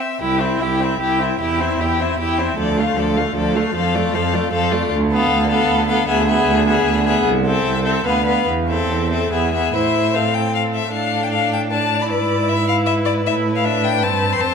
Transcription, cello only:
0.20 0.56 C2 medium
0.61 0.96 C2 medium
1.01 1.36 C2 medium
1.41 1.76 E2 medium
1.80 2.15 E2 medium
2.20 2.54 E2 medium
2.57 2.93 D2 medium
2.97 3.32 D2 medium
3.36 3.71 D2 medium
3.75 4.10 F2 medium
4.15 4.49 F2 medium
4.54 4.87 F2 medium
4.93 5.26 D2 medium
5.31 5.65 D2 medium
5.69 6.04 D2 medium
6.09 6.43 D2 medium
6.48 6.82 D2 medium
6.87 7.21 D2 medium
7.26 7.61 C2 medium
7.66 8.01 C2 medium
8.06 8.43 D2 medium
8.48 8.85 E2 medium
8.89 9.27 E2 medium
9.32 9.69 E2 medium
9.75 10.89 A2 soft
10.92 12.11 A2 soft
12.10 13.26 G#2 soft
13.24 14.04 A2 soft
14.03 14.41 G2 soft
14.41 14.54 F2 medium

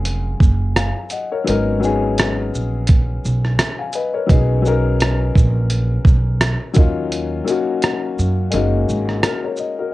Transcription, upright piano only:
0.00 1.44 F#3 medium
0.00 1.49 A#3 medium
0.00 1.47 C#4 medium
0.00 1.49 F4 medium
0.00 1.49 G#4 loud
0.76 1.10 F5 medium
0.76 1.10 G#5 medium
1.11 1.31 D#5 medium
1.11 1.30 F#5 medium
1.32 1.48 A#4 medium
1.32 1.65 C#5 medium
1.44 1.73 F#3 medium
1.44 1.74 B3 medium
1.44 1.75 C#4 medium
1.48 1.75 D#4 medium
1.48 1.76 A#4 medium
1.80 2.87 F#3 medium
1.80 2.88 B3 medium
1.80 2.89 C#4 medium
1.84 2.90 D#4 medium
1.84 2.90 G#4 loud
3.79 3.94 F5 medium
3.79 3.94 G#5 medium
3.95 4.14 B4 medium
3.95 4.13 D#5 medium
4.14 4.48 A#4 medium
4.14 4.47 C#5 medium
4.27 4.56 F#3 medium
4.27 4.56 B3 medium
4.27 4.57 C#4 medium
4.31 4.58 D#4 medium
4.31 4.58 G#4 medium
4.62 5.70 F#3 medium
4.62 5.71 B3 medium
4.62 5.71 C#4 medium
4.66 5.72 D#4 medium
4.66 5.73 A#4 loud
6.74 7.33 F#3 medium
6.74 7.34 A#3 medium
6.74 7.34 C#4 medium
6.78 7.35 D#4 medium
6.78 7.36 F4 loud
7.44 8.52 F#3 medium
7.44 8.50 A#3 medium
7.44 8.52 C#4 medium
7.49 8.53 D#4 medium
7.49 8.54 F#4 loud
8.50 9.38 G#3 medium
8.50 9.39 A#3 medium
8.50 9.39 C#4 medium
8.54 9.40 D#4 medium
8.54 8.90 F#4 medium
9.24 9.43 F#4 medium
9.24 9.43 A#4 medium
9.44 9.59 A#4 medium
9.44 9.59 C#5 medium
9.59 9.78 D#5 medium
9.79 9.94 F#4 medium
9.79 9.94 A#4 medium

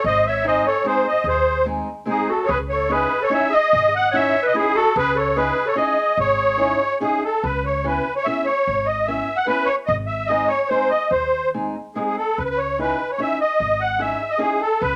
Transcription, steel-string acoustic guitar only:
0.44 0.64 G#3 medium
0.44 0.64 C4 medium
0.44 0.64 D#4 medium
0.44 0.64 G#4 medium
0.84 1.05 G#3 medium
0.84 1.05 C4 medium
0.84 1.05 D#4 medium
0.84 1.05 G#4 medium
1.65 1.87 G#3 medium
1.65 1.87 C4 soft
1.65 1.87 D#4 soft
1.65 1.87 G#4 medium
2.06 2.28 G#3 medium
2.06 2.28 C4 medium
2.06 2.28 D#4 medium
2.06 2.28 G#4 medium
2.89 3.11 C#4 medium
2.89 3.11 D#4 soft
2.89 3.11 E4 medium
2.89 3.11 G#4 medium
3.30 3.52 C#4 medium
3.30 3.52 D#4 medium
3.30 3.52 E4 medium
3.30 3.52 G#4 medium
4.13 4.34 C#4 medium
4.13 4.34 D#4 soft
4.13 4.34 E4 soft
4.13 4.35 G#4 medium
4.54 4.75 C#4 medium
4.54 4.75 D#4 medium
4.54 4.75 E4 medium
4.54 4.75 G#4 medium
5.36 5.56 C#4 medium
5.36 5.56 D#4 soft
5.36 5.57 E4 medium
5.36 5.57 G#4 medium
5.75 5.96 C#4 medium
5.75 5.96 D#4 medium
5.75 5.96 E4 medium
5.75 5.96 G#4 medium
6.57 6.79 C#4 medium
6.57 6.79 D#4 soft
6.57 6.79 E4 medium
6.57 6.79 G#4 medium
7.00 7.22 C#4 medium
7.00 7.22 D#4 medium
7.00 7.22 E4 medium
7.00 7.23 G#4 medium
7.84 8.05 B3 soft
7.84 8.05 C#4 soft
7.84 8.05 E4 soft
7.84 8.05 G#4 medium
8.26 8.46 B3 medium
8.26 8.46 C#4 medium
8.26 8.47 E4 soft
8.26 8.47 G#4 medium
9.08 9.27 B3 medium
9.08 9.28 C#4 soft
9.08 9.28 E4 medium
9.08 9.28 G#4 medium
9.46 9.67 B3 medium
9.46 9.68 C#4 medium
9.46 9.67 E4 medium
9.46 9.67 G#4 medium
10.29 10.49 G#3 medium
10.29 10.49 C4 medium
10.29 10.49 D#4 medium
10.29 10.49 G#4 medium
10.70 10.90 G#3 medium
10.70 10.90 C4 soft
10.70 10.90 D#4 medium
10.70 10.90 G#4 medium
11.54 11.74 G#3 soft
11.54 11.74 C4 soft
11.54 11.74 D#4 soft
11.54 11.74 G#4 medium
11.95 12.16 G#3 medium
11.95 12.16 C4 soft
11.95 12.16 D#4 soft
11.95 12.16 G#4 medium
12.79 12.99 C#4 soft
12.79 12.99 D#4 soft
12.79 12.99 E4 medium
12.79 12.99 G#4 medium
13.18 13.39 C#4 medium
13.18 13.39 D#4 soft
13.18 13.39 E4 medium
13.18 13.40 G#4 medium
13.98 14.20 C#4 medium
13.98 14.20 D#4 soft
13.98 14.20 E4 medium
13.98 14.20 G#4 medium
14.38 14.60 C#4 medium
14.38 14.60 D#4 medium
14.38 14.61 E4 medium
14.38 14.60 G#4 medium

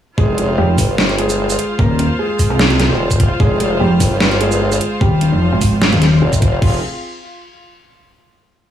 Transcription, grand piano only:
0.18 0.53 G#3 medium
0.18 0.53 G#4 loud
0.58 1.11 G3 medium
0.58 1.11 G4 loud
1.19 1.72 G#3 medium
1.19 1.72 G#4 loud
1.79 2.14 A#3 medium
1.79 2.14 A#4 medium
2.19 3.33 G#3 medium
2.19 3.33 G#4 medium
3.40 3.75 G#3 medium
3.40 3.75 G#4 loud
3.80 4.33 G3 medium
3.80 4.33 G4 loud
4.41 4.94 G#3 medium
4.41 4.94 G#4 loud
5.01 5.36 G3 medium
5.01 5.36 G4 loud
5.41 6.55 F3 medium
5.41 6.55 F4 medium
6.62 6.77 F4 loud

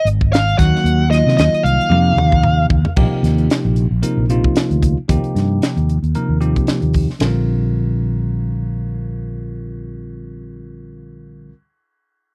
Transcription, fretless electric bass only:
0.05 0.54 G#1 medium
0.60 0.72 D#2 medium
0.84 1.22 D#2 medium
1.26 1.36 C3 medium
1.39 1.51 D#2 medium
1.64 1.77 C2 medium
1.90 2.14 F2 medium
2.16 2.65 D#2 medium
2.70 2.83 D#2 medium
2.97 3.10 A#1 medium
3.12 muted fretless electric bass stroke soft
3.23 3.47 D#2 medium
3.65 3.88 A#1 medium
3.91 4.01 A#1 medium
4.17 4.41 A#1 medium
4.56 muted fretless electric bass stroke soft
4.71 4.94 D2 medium
5.09 5.22 D#2 medium
5.23 muted fretless electric bass stroke soft
5.35 5.59 G2 medium
5.77 6.00 D#2 medium
6.03 6.13 D#2 medium
6.29 6.53 D#2 medium
6.68 muted fretless electric bass stroke soft
6.82 7.06 D#2 medium
7.21 11.51 A#1 medium

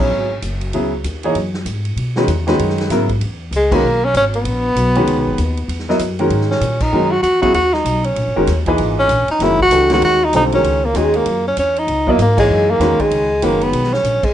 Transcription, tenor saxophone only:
0.00 0.43 C#4 medium
3.56 3.76 G#3 medium
3.74 4.06 A#3 medium
4.05 4.15 C#4 medium
4.16 4.24 C#4 medium
4.35 5.97 B3 loud
6.50 6.83 C#4 medium
6.82 7.13 D#4 medium
7.11 7.22 F#4 medium
7.22 7.40 F#4 medium
7.42 7.53 F#4 medium
7.54 7.75 F#4 medium
7.73 8.06 D#4 medium
8.05 8.66 C#4 medium
8.99 9.27 C#4 loud
9.31 9.44 D#4 medium
9.43 9.60 E4 loud
9.62 9.89 F#4 loud
9.93 10.03 F#4 medium
10.04 10.25 F#4 loud
10.24 10.34 D#4 medium
10.36 10.44 D#4 medium
10.54 10.86 C#4 medium
10.85 10.98 A#3 medium
10.97 11.18 G#3 medium
11.16 11.46 A#3 medium
11.47 11.57 C#4 medium
11.59 11.80 C#4 medium
11.78 12.12 D#4 loud
12.10 12.20 A#3 medium
12.22 12.37 A#3 medium
12.39 12.72 G#3 medium
12.70 13.02 A#3 medium
13.01 13.46 G#3 medium
13.44 13.64 A#3 medium
13.62 13.95 B3 medium
13.93 14.26 C#4 medium
14.24 14.34 G#3 medium

